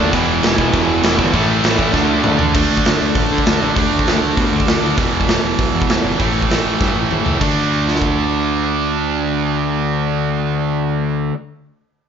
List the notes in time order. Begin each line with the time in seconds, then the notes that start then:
Already playing: D3 A3 D4
0.00 D#2 D3 A3
0.12 E1 E2 B2 E3, kick, crash
0.42 E1, snare, crash
0.57 E1 E2 B2 E3, kick
0.72 E1 E2 B2 E3, kick, crash
1.01 E1 E2 B2 E3, snare, crash
1.18 G1 E2 B2 E3, kick
1.32 A1 A2 E3 A3, kick, crash
1.64 A1, snare, crash
1.77 A1 A2 E3 A3, kick
1.92 D2 D3 A3 D4, kick, snare
2.24 D2, mid tom
2.38 D3 A3 D4, floor tom
2.54 D2 D3 A3 D4, kick, crash
2.70 D2
2.77 kick
2.85 D2, snare, open hi-hat
3.01 D2
3.15 A1, kick, open hi-hat
3.32 D3
3.38 kick
3.46 D2, snare, open hi-hat
3.59 A1 D3 A3 D4
3.75 D2 D3 A3 D4, kick, open hi-hat
3.92 D2
3.99 kick
4.07 D2, snare, open hi-hat
4.22 D2
4.37 B2, kick, open hi-hat
4.52 D2
4.60 kick
4.67 D2, snare, open hi-hat
4.82 D2 D3 A3 D4
4.97 E1 E2 B2 E3, kick, open hi-hat
5.13 E1
5.21 kick
5.28 E1, snare, open hi-hat
5.43 E1
5.59 B1, kick, open hi-hat
5.73 E2
5.82 kick
5.89 E1, snare, open hi-hat
6.03 G1 E2 B2 E3
6.18 A1 A2 E3 A3, kick, open hi-hat
6.34 A1
6.42 kick
6.50 A1, snare, open hi-hat
6.65 A1
6.81 G2, kick, snare
6.96 A1
7.11 A1, mid tom
7.24 C#2 A2 E3 A3, floor tom
7.39 D2 D3 A3 D4, kick, crash
7.88 snare
7.95 snare
8.02 kick